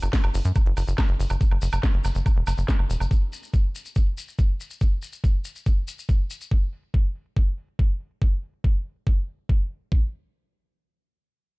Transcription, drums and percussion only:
0.02 closed hi-hat medium
0.02 high woodblock soft
0.02 maracas medium
0.13 kick loud
0.13 snare loud
0.13 closed hi-hat medium
0.13 maracas soft
0.24 closed hi-hat medium
0.24 high woodblock medium
0.34 open hi-hat medium
0.34 maracas loud
0.45 closed hi-hat soft
0.45 maracas medium
0.55 kick loud
0.55 closed hi-hat medium
0.55 high woodblock soft
0.55 maracas soft
0.66 closed hi-hat medium
0.77 open hi-hat loud
0.77 high woodblock soft
0.77 maracas loud
0.88 closed hi-hat medium
0.88 maracas soft
0.98 kick loud
0.98 snare loud
0.98 closed hi-hat medium
0.98 high woodblock medium
0.98 maracas soft
1.09 closed hi-hat medium
1.19 open hi-hat medium
1.19 maracas loud
1.30 closed hi-hat soft
1.30 high woodblock soft
1.30 maracas medium
1.41 kick loud
1.41 closed hi-hat medium
1.41 maracas soft
1.51 closed hi-hat soft
1.51 high woodblock soft
1.62 open hi-hat loud
1.62 maracas loud
1.72 high woodblock medium
1.72 maracas soft
1.83 kick loud
1.83 snare loud
1.83 closed hi-hat medium
1.83 maracas soft
1.94 closed hi-hat medium
2.04 open hi-hat medium
2.04 high woodblock soft
2.04 maracas medium
2.15 closed hi-hat soft
2.15 maracas soft
2.26 kick loud
2.26 closed hi-hat medium
2.26 high woodblock soft
2.26 maracas soft
2.37 closed hi-hat medium
2.47 open hi-hat loud
2.47 high woodblock medium
2.47 maracas medium
2.58 closed hi-hat soft
2.58 maracas soft
2.68 kick loud
2.68 snare loud
2.68 closed hi-hat medium
2.68 maracas soft
2.79 closed hi-hat medium
2.79 high woodblock soft
2.90 open hi-hat medium
2.90 maracas loud
3.00 high woodblock soft
3.00 maracas medium
3.11 kick loud
3.11 closed hi-hat medium
3.11 maracas soft
3.22 closed hi-hat soft
3.32 open hi-hat loud
3.32 maracas medium
3.43 closed hi-hat soft
3.43 maracas soft
3.53 kick loud
3.53 maracas soft
3.64 closed hi-hat medium
3.75 open hi-hat medium
3.75 maracas medium
3.85 closed hi-hat soft
3.85 maracas soft
3.96 kick loud
3.96 maracas soft
4.07 closed hi-hat soft
4.17 open hi-hat loud
4.17 maracas medium
4.28 closed hi-hat soft
4.28 maracas medium
4.39 kick loud
4.39 maracas soft
4.49 closed hi-hat soft
4.60 open hi-hat medium
4.60 maracas medium
4.70 closed hi-hat soft
4.70 maracas medium
4.81 kick loud
4.81 maracas soft
4.92 closed hi-hat medium
5.02 open hi-hat loud
5.02 maracas medium
5.12 closed hi-hat medium
5.12 maracas medium
5.24 kick loud
5.24 maracas soft
5.34 closed hi-hat medium
5.45 open hi-hat medium
5.45 maracas medium
5.55 closed hi-hat soft
5.55 maracas soft
5.66 kick loud
5.66 maracas soft
5.77 closed hi-hat medium
5.88 open hi-hat loud
5.88 maracas medium
5.98 closed hi-hat medium
5.98 maracas soft
6.09 kick loud
6.09 maracas soft
6.19 closed hi-hat medium
6.30 open hi-hat medium
6.30 maracas medium
6.41 closed hi-hat medium
6.41 maracas medium
6.51 kick loud
6.62 closed hi-hat medium
6.73 open hi-hat loud
6.83 closed hi-hat medium
6.94 kick loud
7.05 closed hi-hat medium
7.15 open hi-hat medium
7.26 closed hi-hat medium
7.37 kick loud
7.47 closed hi-hat medium
7.58 open hi-hat medium
7.68 closed hi-hat medium
7.79 kick loud
7.90 closed hi-hat medium
8.00 open hi-hat medium
8.11 closed hi-hat medium
8.22 kick loud
8.32 closed hi-hat medium
8.43 open hi-hat loud
8.54 closed hi-hat medium
8.64 kick loud
8.85 open hi-hat medium
8.96 closed hi-hat medium
9.07 kick loud
9.28 open hi-hat loud
9.39 closed hi-hat medium
9.49 kick loud
9.60 closed hi-hat medium
9.71 open hi-hat medium
9.81 closed hi-hat medium
9.92 kick loud

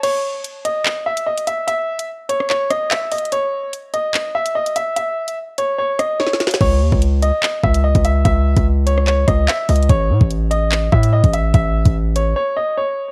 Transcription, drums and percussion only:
0.03 closed hi-hat medium
0.03 crash medium
0.44 closed hi-hat medium
0.65 closed hi-hat medium
0.85 clap loud
1.17 closed hi-hat medium
1.37 closed hi-hat medium
1.47 closed hi-hat medium
1.68 closed hi-hat medium
1.99 closed hi-hat medium
2.29 closed hi-hat medium
2.40 cross-stick medium
2.50 clap medium
2.70 cross-stick medium
2.70 closed hi-hat medium
2.91 clap loud
3.12 closed hi-hat medium
3.12 open hi-hat medium
3.18 closed hi-hat medium
3.25 closed hi-hat medium
3.32 closed hi-hat medium
3.73 closed hi-hat medium
3.94 closed hi-hat medium
4.14 clap loud
4.46 closed hi-hat medium
4.66 closed hi-hat medium
4.76 closed hi-hat medium
4.96 closed hi-hat medium
5.28 closed hi-hat medium
5.58 closed hi-hat medium
5.99 cross-stick medium
5.99 closed hi-hat medium
6.20 snare medium
6.27 snare medium
6.33 snare medium
6.40 snare medium
6.40 closed hi-hat medium
6.47 snare loud
6.51 snare medium
6.51 closed hi-hat medium
6.61 kick loud
6.61 crash medium
6.92 kick loud
7.02 closed hi-hat medium
7.22 closed hi-hat medium
7.43 clap loud
7.64 kick loud
7.74 closed hi-hat medium
7.95 kick medium
7.95 closed hi-hat medium
8.05 closed hi-hat medium
8.25 kick loud
8.25 closed hi-hat medium
8.57 kick loud
8.57 closed hi-hat medium
8.87 closed hi-hat medium
8.98 cross-stick medium
9.07 clap medium
9.28 kick loud
9.28 cross-stick medium
9.28 closed hi-hat medium
9.48 clap loud
9.69 closed hi-hat medium
9.69 open hi-hat medium
9.76 closed hi-hat medium
9.83 closed hi-hat medium
9.89 kick loud
9.89 closed hi-hat medium
10.21 kick loud
10.31 closed hi-hat medium
10.51 closed hi-hat medium
10.72 clap loud
10.92 kick loud
11.03 closed hi-hat medium
11.24 kick medium
11.24 closed hi-hat medium
11.33 closed hi-hat medium
11.54 kick loud
11.54 closed hi-hat medium
11.85 kick loud
11.85 closed hi-hat medium
12.16 closed hi-hat medium

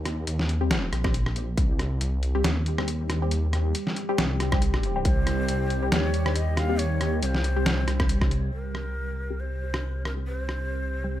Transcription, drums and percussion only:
0.06 cross-stick soft
0.06 closed hi-hat soft
0.27 closed hi-hat medium
0.39 snare soft
0.49 closed hi-hat medium
0.71 snare loud
0.71 closed hi-hat medium
0.93 cross-stick medium
0.93 closed hi-hat medium
1.04 kick loud
1.04 cross-stick medium
1.14 closed hi-hat medium
1.26 cross-stick medium
1.36 closed hi-hat medium
1.58 kick loud
1.58 closed hi-hat medium
1.79 cross-stick soft
1.79 closed hi-hat soft
2.01 closed hi-hat medium
2.23 closed hi-hat medium
2.44 snare loud
2.44 closed hi-hat medium
2.66 closed hi-hat medium
2.78 cross-stick medium
2.88 closed hi-hat medium
3.10 cross-stick medium
3.10 closed hi-hat medium
3.31 closed hi-hat medium
3.53 cross-stick medium
3.53 closed hi-hat soft
3.75 closed hi-hat medium
3.87 snare soft
3.96 closed hi-hat medium
4.18 snare loud
4.18 closed hi-hat medium
4.40 cross-stick medium
4.40 closed hi-hat medium
4.52 kick loud
4.52 cross-stick medium
4.62 closed hi-hat medium
4.74 cross-stick medium
4.83 closed hi-hat medium
5.05 kick loud
5.05 closed hi-hat medium
5.27 cross-stick medium
5.27 closed hi-hat medium
5.49 closed hi-hat medium
5.70 closed hi-hat medium
5.92 snare loud
5.92 closed hi-hat medium
6.14 closed hi-hat medium
6.26 cross-stick medium
6.36 closed hi-hat medium
6.57 cross-stick medium
6.57 closed hi-hat medium
6.79 closed hi-hat medium
7.01 cross-stick medium
7.01 closed hi-hat medium
7.23 closed hi-hat medium
7.35 snare soft
7.44 closed hi-hat medium
7.66 snare loud
7.66 closed hi-hat medium
7.88 cross-stick medium
7.88 closed hi-hat medium
8.00 kick loud
8.00 cross-stick medium
8.09 closed hi-hat medium
8.21 kick medium
8.21 cross-stick medium
8.31 closed hi-hat medium
8.75 cross-stick soft
9.74 cross-stick medium
10.05 cross-stick medium
10.49 cross-stick soft

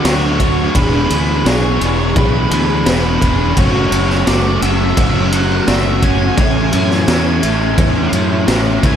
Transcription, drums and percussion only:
0.05 snare loud
0.05 ride loud
0.40 kick medium
0.40 ride medium
0.75 kick loud
0.75 ride loud
1.10 ride medium
1.46 snare loud
1.46 ride medium
1.81 ride medium
2.16 kick loud
2.16 ride medium
2.51 ride medium
2.86 snare loud
2.86 ride loud
3.22 kick medium
3.22 ride medium
3.57 kick loud
3.57 ride loud
3.92 ride medium
4.10 snare soft
4.27 snare loud
4.27 ride loud
4.62 ride medium
4.97 kick loud
4.97 ride loud
5.32 ride medium
5.68 snare loud
5.68 ride loud
6.02 kick medium
6.02 ride medium
6.37 kick loud
6.37 ride loud
6.73 ride medium
6.90 snare soft
7.08 snare medium
7.08 ride loud
7.43 ride medium
7.78 kick loud
7.78 ride loud
8.13 ride medium
8.48 snare loud
8.48 ride loud
8.83 kick medium
8.83 ride medium

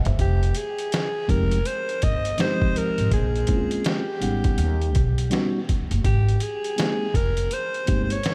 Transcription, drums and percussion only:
0.05 closed hi-hat medium
0.05 floor tom loud
0.19 kick medium
0.19 closed hi-hat medium
0.43 closed hi-hat soft
0.55 closed hi-hat medium
0.79 closed hi-hat soft
0.92 snare loud
0.92 closed hi-hat medium
1.29 kick medium
1.29 closed hi-hat medium
1.51 closed hi-hat medium
1.65 closed hi-hat loud
1.89 closed hi-hat soft
2.02 kick medium
2.02 closed hi-hat medium
2.25 closed hi-hat medium
2.38 snare loud
2.38 closed hi-hat medium
2.62 kick medium
2.76 closed hi-hat medium
2.98 closed hi-hat soft
3.11 kick loud
3.11 closed hi-hat medium
3.35 closed hi-hat soft
3.47 kick medium
3.47 closed hi-hat medium
3.71 closed hi-hat soft
3.85 snare loud
3.85 closed hi-hat medium
4.22 closed hi-hat medium
4.44 kick medium
4.44 closed hi-hat medium
4.58 closed hi-hat loud
4.81 closed hi-hat soft
4.95 kick medium
4.95 closed hi-hat medium
5.18 closed hi-hat medium
5.31 snare medium
5.31 closed hi-hat medium
5.69 kick medium
5.69 closed hi-hat medium
5.91 closed hi-hat soft
6.04 kick loud
6.04 closed hi-hat medium
6.29 closed hi-hat soft
6.40 closed hi-hat medium
6.64 closed hi-hat soft
6.78 snare loud
6.78 closed hi-hat medium
7.14 kick medium
7.14 closed hi-hat medium
7.37 closed hi-hat soft
7.51 closed hi-hat loud
7.74 closed hi-hat soft
7.87 kick medium
7.87 closed hi-hat medium
8.10 closed hi-hat medium
8.23 snare medium
8.23 closed hi-hat medium

